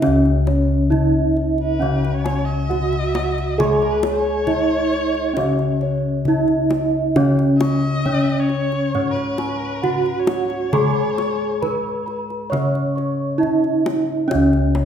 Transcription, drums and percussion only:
0.02 kendang high soft
0.02 kendang low medium
0.25 kendang slap soft
0.47 kendang high soft
0.92 kendang slap soft
0.92 kendang low medium
1.37 kendang slap soft
1.58 kendang slap soft
1.82 kendang low soft
2.05 kendang slap soft
2.26 kendang slap soft
2.26 kendang high medium
2.71 kendang slap soft
2.71 kendang low medium
2.93 kendang slap soft
3.15 kendang slap soft
3.15 kendang high medium
3.38 kendang slap soft
3.60 kendang high medium
3.60 kendang low medium
3.82 kendang slap soft
4.03 kendang high medium
4.47 kendang slap soft
4.47 kendang low medium
4.93 kendang slap soft
5.15 kendang slap soft
5.37 kendang high medium
5.37 kendang low medium
5.59 kendang slap soft
5.81 kendang slap soft
6.25 kendang slap soft
6.25 kendang low medium
6.48 kendang slap soft
6.70 kendang slap soft
6.70 kendang high medium
7.16 kendang high medium
7.16 kendang low medium
7.39 kendang slap soft
7.61 kendang high medium
8.06 kendang slap soft
8.06 kendang low medium
8.49 kendang slap soft
8.72 kendang slap soft
8.95 kendang low medium
9.16 kendang slap soft
9.38 kendang slap soft
9.38 kendang high soft
9.84 kendang slap soft
9.84 kendang low medium
10.06 kendang slap soft
10.27 kendang slap soft
10.27 kendang high medium
10.50 kendang slap soft
10.73 kendang high medium
10.73 kendang low medium
11.18 kendang high medium
11.62 kendang slap soft
11.62 kendang low medium
12.08 kendang slap soft
12.30 kendang slap soft
12.53 kendang high soft
12.53 kendang low soft
12.75 kendang slap soft
12.98 kendang slap soft
13.43 kendang slap soft
13.43 kendang low medium
13.64 kendang slap soft
13.86 kendang slap soft
13.86 kendang high medium
14.31 kendang high medium
14.31 kendang low medium
14.53 kendang slap soft
14.75 kendang high medium

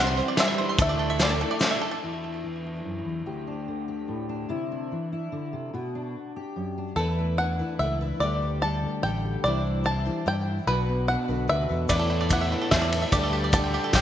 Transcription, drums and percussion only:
0.19 shaker soft
0.37 snare medium
0.37 ride medium
0.37 shaker medium
0.79 kick loud
0.79 ride medium
0.79 shaker medium
1.10 shaker soft
1.20 snare medium
1.20 ride medium
1.20 shaker medium
1.40 shaker soft
1.60 snare medium
1.60 ride medium
1.60 shaker medium
11.89 kick soft
11.89 ride medium
11.89 shaker medium
12.30 kick soft
12.30 ride medium
12.30 shaker medium
12.72 kick medium
12.72 snare medium
12.72 ride medium
12.72 shaker medium
12.92 ride medium
13.12 kick medium
13.12 ride medium
13.12 shaker medium
13.53 kick medium
13.53 ride medium
13.53 shaker medium
13.93 kick medium
13.93 snare medium
13.93 ride medium
13.93 shaker medium

